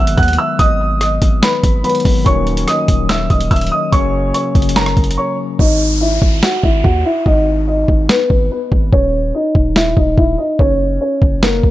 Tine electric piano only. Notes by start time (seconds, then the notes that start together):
Already playing: D#3 F#3 G#3 B3
1.83 D#3 F#3 G#3 B3
2.24 D#3 F#3 A#3 C#4
3.91 C#3 F#3 A#3 C#4